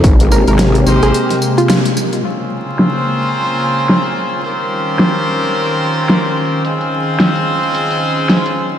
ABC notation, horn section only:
X:1
M:4/4
L:1/8
Q:"Swing 16ths" 1/4=109
K:Bbdor
V:1 name="Horn section"
z3 [CEGBc]2 z3 | [B,,CDFAc]8 | [E,CDFGBc]8 | [D,CEFAc]8 |]